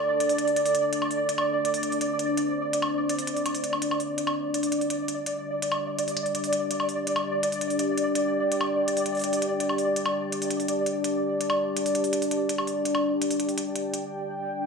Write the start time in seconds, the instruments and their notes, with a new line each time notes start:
Already playing: ambient pad D4 A4 D5, synth texture D5
0.20 closed hi-hat
0.29 open hi-hat
0.38 closed hi-hat
0.48 open hi-hat
0.56 closed hi-hat
0.66 open hi-hat
0.75 closed hi-hat
0.93 closed hi-hat
1.02 low woodblock
1.11 open hi-hat
1.29 ambient pad C5, closed hi-hat
1.38 low woodblock
1.65 closed hi-hat
1.74 open hi-hat
1.83 closed hi-hat
1.92 open hi-hat
2.01 closed hi-hat
2.19 closed hi-hat
2.37 closed hi-hat
2.73 closed hi-hat
2.82 low woodblock
3.09 closed hi-hat
3.19 open hi-hat
3.27 closed hi-hat
3.37 open hi-hat
3.46 closed hi-hat, low woodblock
3.55 open hi-hat
3.64 closed hi-hat
3.73 low woodblock
3.82 closed hi-hat
3.91 low woodblock
4.00 open hi-hat
4.18 ambient pad G4 D5, synth texture D5, closed hi-hat
4.27 low woodblock
4.54 closed hi-hat
4.63 open hi-hat
4.72 closed hi-hat
4.81 open hi-hat
4.90 closed hi-hat
5.08 closed hi-hat
5.26 closed hi-hat
5.62 closed hi-hat
5.72 low woodblock
5.99 closed hi-hat
6.08 open hi-hat
6.17 closed hi-hat
6.26 open hi-hat
6.35 closed hi-hat
6.44 open hi-hat
6.53 closed hi-hat
6.71 closed hi-hat
6.80 low woodblock
6.89 open hi-hat
7.07 ambient pad G5, closed hi-hat
7.16 low woodblock
7.43 closed hi-hat
7.52 open hi-hat
7.61 closed hi-hat
7.70 open hi-hat
7.79 closed hi-hat
7.98 closed hi-hat
8.15 closed hi-hat
8.52 closed hi-hat
8.61 low woodblock
8.88 closed hi-hat
8.97 open hi-hat
9.06 closed hi-hat
9.15 open hi-hat
9.17 open hi-hat
9.19 open hi-hat
9.21 closed hi-hat, open hi-hat
9.33 open hi-hat
9.42 closed hi-hat
9.60 closed hi-hat
9.69 low woodblock
9.78 open hi-hat
9.96 ambient pad D5, closed hi-hat
10.06 low woodblock
10.32 closed hi-hat
10.42 open hi-hat
10.51 closed hi-hat
10.60 open hi-hat
10.68 closed hi-hat
10.86 closed hi-hat
11.04 closed hi-hat
11.41 closed hi-hat
11.50 low woodblock
11.77 closed hi-hat
11.86 open hi-hat
11.95 closed hi-hat
12.04 open hi-hat
12.13 closed hi-hat
12.22 open hi-hat
12.31 closed hi-hat
12.49 closed hi-hat
12.58 low woodblock
12.67 open hi-hat
12.85 ambient pad G5, closed hi-hat
12.95 low woodblock
13.22 closed hi-hat
13.31 open hi-hat
13.40 closed hi-hat
13.49 open hi-hat
13.58 closed hi-hat
13.76 closed hi-hat
13.94 closed hi-hat